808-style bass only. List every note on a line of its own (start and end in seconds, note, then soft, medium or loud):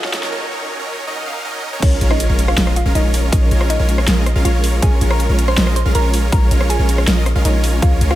0.00 0.21 D#2 loud
0.23 0.31 D#2 loud
1.82 1.99 A#1 loud
2.01 2.28 A#1 medium
2.29 2.56 A#1 loud
2.57 2.84 A#1 loud
2.86 2.93 A#1 loud
2.95 3.31 A#1 loud
3.33 3.49 A#1 medium
3.51 3.78 A#1 loud
3.80 4.06 A#1 loud
4.08 4.34 A#1 loud
4.36 4.43 A#1 loud
4.45 4.81 A#1 loud
4.82 4.99 A#1 medium
5.01 5.28 A#1 loud
5.29 5.56 A#1 loud
5.57 5.84 A#1 loud
5.86 5.93 A#1 loud
5.95 6.31 A#1 loud
6.32 6.49 A#1 loud
6.51 6.77 A#1 medium
6.79 7.05 A#1 loud
7.07 7.34 A#1 loud
7.36 7.43 A#1 loud
7.45 7.80 A#1 loud
7.82 7.99 C#2 loud
8.01 8.15 C#2 loud